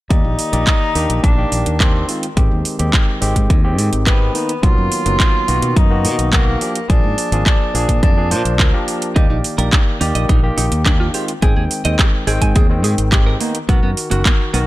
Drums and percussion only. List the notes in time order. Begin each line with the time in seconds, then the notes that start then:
0.11 kick, closed hi-hat
0.39 open hi-hat
0.53 closed hi-hat
0.67 kick, clap, closed hi-hat
0.95 open hi-hat
1.10 closed hi-hat
1.24 kick, closed hi-hat
1.52 open hi-hat
1.66 closed hi-hat
1.80 kick, clap, closed hi-hat
2.09 open hi-hat
2.23 closed hi-hat
2.37 kick, closed hi-hat
2.65 open hi-hat
2.79 closed hi-hat
2.93 kick, clap, closed hi-hat
3.22 open hi-hat
3.36 kick, closed hi-hat
3.50 kick, closed hi-hat
3.79 open hi-hat
3.93 closed hi-hat
4.07 kick, clap, closed hi-hat
4.35 open hi-hat
4.49 closed hi-hat
4.63 kick, closed hi-hat
4.92 open hi-hat
5.06 closed hi-hat
5.20 kick, clap, closed hi-hat
5.48 open hi-hat
5.62 closed hi-hat
5.76 kick, closed hi-hat
6.05 open hi-hat
6.19 closed hi-hat
6.33 kick, clap, closed hi-hat
6.61 open hi-hat
6.75 closed hi-hat
6.90 kick, closed hi-hat
7.18 open hi-hat
7.32 closed hi-hat
7.46 kick, clap, closed hi-hat
7.75 open hi-hat
7.89 kick, closed hi-hat
8.03 kick, closed hi-hat
8.31 open hi-hat
8.45 closed hi-hat
8.59 kick, clap, closed hi-hat
8.88 open hi-hat
9.02 closed hi-hat
9.16 kick, closed hi-hat
9.44 open hi-hat
9.59 closed hi-hat
9.73 kick, clap, closed hi-hat
10.01 open hi-hat
10.15 closed hi-hat
10.29 kick, closed hi-hat
10.58 open hi-hat
10.72 closed hi-hat
10.86 kick, clap, closed hi-hat
11.14 open hi-hat
11.28 closed hi-hat
11.42 kick, closed hi-hat
11.71 open hi-hat
11.85 closed hi-hat
11.99 kick, clap, closed hi-hat
12.27 open hi-hat
12.42 kick, closed hi-hat
12.56 kick, closed hi-hat
12.84 open hi-hat
12.98 closed hi-hat
13.12 kick, clap, closed hi-hat
13.41 open hi-hat
13.55 closed hi-hat
13.69 kick, closed hi-hat
13.97 open hi-hat
14.11 closed hi-hat
14.25 kick, clap, closed hi-hat
14.54 open hi-hat